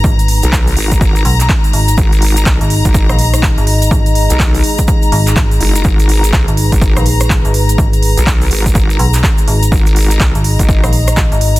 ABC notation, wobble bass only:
X:1
M:4/4
L:1/16
Q:"Swing 16ths" 1/4=124
K:G#m
V:1 name="Wobble bass" clef=bass
z3 B,,,3 G,,,4 z6 | G,,,4 B,,, z2 G,,,2 z6 z | z3 B,,,3 z8 F,,,2 | G,,,4 B,,, z2 G,,,2 z6 z |
z3 B,,,3 G,,,4 z6 | G,,,4 B,,, z2 G,,,2 z6 z |]